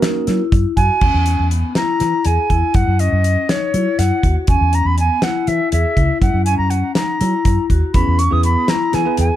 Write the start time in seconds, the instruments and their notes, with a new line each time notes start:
Already playing: tine electric piano A#3 C#4 F#4 A#4
0.02 vibraphone D#4, snare, closed hi-hat
0.27 fingered electric bass F#3, vibraphone E4, snare, closed hi-hat
0.52 fingered electric bass F#2, kick, closed hi-hat
0.77 fingered electric bass F#2, vibraphone F#4, flute G#5, kick, closed hi-hat
1.01 fingered electric bass E2, vibraphone C#4, kick, crash
1.14 fingered electric bass E2
1.26 closed hi-hat
1.39 fingered electric bass E2
1.51 vibraphone B3, closed hi-hat
1.75 vibraphone E4, flute A#5, snare, closed hi-hat
2.00 fingered electric bass E3, snare, closed hi-hat
2.25 fingered electric bass E2, vibraphone G#4, flute G#5, closed hi-hat
2.50 fingered electric bass E2, vibraphone E4, kick, closed hi-hat
2.74 fingered electric bass F#2, flute F#5, kick, closed hi-hat
2.87 fingered electric bass F#2
2.99 vibraphone C#4, flute D#5, closed hi-hat
3.12 fingered electric bass F#2
3.24 closed hi-hat
3.49 vibraphone D#4, flute C#5, snare, closed hi-hat
3.74 fingered electric bass F#3, vibraphone E4, closed hi-hat
3.99 fingered electric bass F#2, flute F#5, snare, closed hi-hat
4.23 fingered electric bass D#2, vibraphone F#4, kick, closed hi-hat
4.47 fingered electric bass E2, vibraphone C#4, flute G#5, kick, closed hi-hat
4.61 fingered electric bass E2
4.73 flute A#5, closed hi-hat
4.85 fingered electric bass E2, flute B5
4.98 vibraphone B3, flute G#5, closed hi-hat
5.22 vibraphone E4, flute F#5, snare, closed hi-hat
5.47 fingered electric bass E3, flute E5, closed hi-hat
5.72 fingered electric bass E2, vibraphone G#4, flute E5, closed hi-hat
5.97 fingered electric bass C#2, vibraphone E4, kick, closed hi-hat
6.22 fingered electric bass F#2, flute F#5, kick, closed hi-hat
6.34 fingered electric bass F#2
6.45 vibraphone C#4, flute G#5, closed hi-hat
6.58 fingered electric bass F#2, flute A#5
6.70 flute F#5, closed hi-hat
6.95 vibraphone D#4, flute A#5, snare, closed hi-hat
7.21 fingered electric bass F#3, vibraphone E4, closed hi-hat
7.45 fingered electric bass F#2, kick, closed hi-hat
7.70 fingered electric bass D#2, vibraphone F#4, kick, closed hi-hat
7.94 fingered electric bass E2, tine electric piano B3 E4 G#4 B4, vibraphone C#4, flute B5, kick, closed hi-hat
8.07 fingered electric bass E2
8.19 flute C#6, closed hi-hat
8.31 fingered electric bass E2, tine electric piano B3 E4 G#4 B4, flute D#6
8.43 vibraphone B3, flute B5, closed hi-hat
8.68 vibraphone E4, flute A#5, snare, closed hi-hat
8.93 fingered electric bass E3, tine electric piano B3 E4 G#4 B4, flute G#5, snare, closed hi-hat
9.05 tine electric piano B3 E4 G#4 B4
9.17 fingered electric bass E2, vibraphone G#4, flute G#5, closed hi-hat